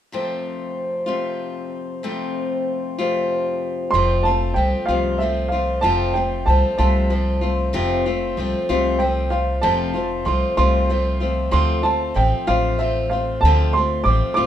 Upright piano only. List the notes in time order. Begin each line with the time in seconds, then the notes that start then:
3.91 C6
4.23 A5
4.54 G5
4.86 F5
5.18 E5
5.48 F5
5.81 A5
6.14 G5
6.46 A5
6.78 A5
8.99 G5
9.30 F5
9.62 A5
10.26 C6
10.57 C6
11.52 C6
11.83 A5
12.16 G5
12.48 F5
12.79 E5
13.10 F5
13.41 A5
13.73 C6
14.04 D6
14.34 D6